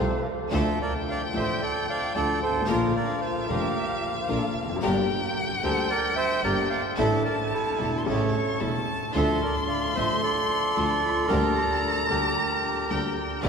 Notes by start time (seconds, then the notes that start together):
Already playing: C2 C3 F3 A3 C4 F4 A4 C5
0.50 D2 D3 F3 A3 D4 F4 A4 E5 G5
0.55 A4
0.82 A#4 D5
1.09 D5 F5
1.33 A1 A2 D3 F3 A3 D4 F4 A4 E5
1.38 C5
1.61 A4 D5
1.89 D5 F5
2.15 D2 D3 F3 A3 D4 F4 A4 D5
2.41 G#1 A4 C5
2.49 G1
2.55 G#1
2.62 A1
2.68 A#1 A#2 D3 F3 A#3 D4 F4 A#4 F5
2.96 A#4 D5
3.21 F4 C5
3.48 F1 F2 D3 F3 A#3 D4 F4 G4 A#4
4.21 C5
4.28 A#1 A#2 D3 F3 A#3 D4 F4 A#4
4.38 A4
4.47 A#4
4.56 F1
4.63 E2
4.69 F2
4.76 F#2
4.82 G1 G2 D3 G3 A#3 D4 G4 A#4 G5
5.62 D2 D3 G3 A#3 D4 G4 A4 A#4 C5
5.90 A#4 D5
6.16 C5 E5
6.43 G1 G2 D3 G3 A#3 D4 G4 A#4 D5
6.70 D5 F5
6.96 A1 A2 D3 E3 A3 D4 E4 A4 E5 A5
7.24 A#4 D5
7.54 E4 A4
7.77 E1 E2 D3 E3 A3 D4 E4 A4
7.98 C6
8.04 A1 A2 C#3 E3 A3 C#4 E4 A4 C#6
8.08 A4 C#5
8.60 E1 E2 C#3 E3 A3 C#4 E4 A4 A5
9.14 D2 D3 F3 A3 D4 F4 A4 C6
9.19 E5
9.42 A#4 D5
9.68 D5 F5
9.95 A1 A2 D3 F3 A3 D4 F4 A4 C5 E5
10.22 A4 D5
10.75 D2 D3 F3 A3 D4 F4 A4
11.03 F4
11.28 D2 D3 G3 A#3 D4 G4 A#4 A#5
11.56 G4
12.09 D2 D3 G3 A#3 D4 G4 A#4
12.89 D2 D3 G3 A#3 D4 G4 A#4 G5
13.43 E2 D3 E3 G#3 B3 D4 E4 G#4 G#5